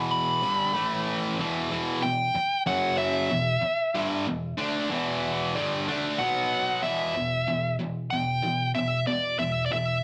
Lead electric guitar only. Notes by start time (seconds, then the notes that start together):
0.11 B5
2.02 G5
2.67 F#5
2.98 E5
6.19 F#5
6.83 E5
8.10 G5
8.75 E5
9.07 D5
9.39 E5
9.66 D5
9.73 E5